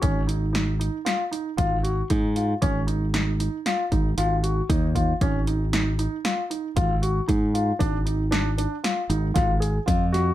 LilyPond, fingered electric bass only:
\new Staff \with { instrumentName = "Fingered electric bass" } { \clef bass \time 5/4 \key dis \minor \tempo 4 = 116 gis,,2 r4 gis,,4 gis,4 | gis,,2 r8 gis,,8 gis,,4 dis,4 | gis,,2 r4 gis,,4 gis,4 | aes,,2 r8 aes,,8 aes,,4 f,4 | }